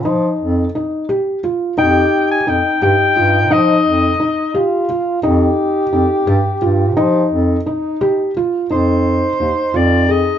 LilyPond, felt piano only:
\new Staff \with { instrumentName = "Felt piano" } { \time 5/8 \key ees \mixolydian \tempo 4 = 87 ees'4 ees'8 g'8 f'8 | ees'4 ees'8 g'8 f'8 | ees'4 ees'8 g'8 f'8 | ees'4 ees'8 g'8 f'8 |
ees'4 ees'8 g'8 f'8 | ees'4 ees'8 f'8 aes'8 | }